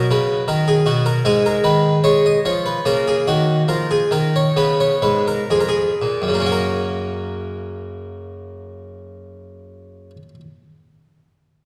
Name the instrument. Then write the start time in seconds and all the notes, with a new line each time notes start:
harpsichord
Already playing: F#3 A#4
0.11 C#3 B4
0.48 D#3 A#4
0.68 G#4
0.86 B2 F#4
1.06 A#4
1.25 G#2 G#3 G#4
1.46 A#4
1.64 D#3 B4
2.04 G#3 C#5
2.26 D#5
2.45 F3 C#5
2.66 B4
2.86 C#3 A#3 A#4
3.08 G#4
3.27 D#3 F#4
3.68 F3 A#4
3.91 G#4
4.11 D#3 A#4
4.36 C#5
4.56 C#3 B3 B4
4.80 C#5
5.02 G#2 B4
5.28 A#4
5.50 F2 G#4
5.61 A#4
5.69 G#4
6.02 A#2
6.22 F#2
6.28 C#3
6.34 A#3
6.40 C#4
6.46 F#4
6.52 A#4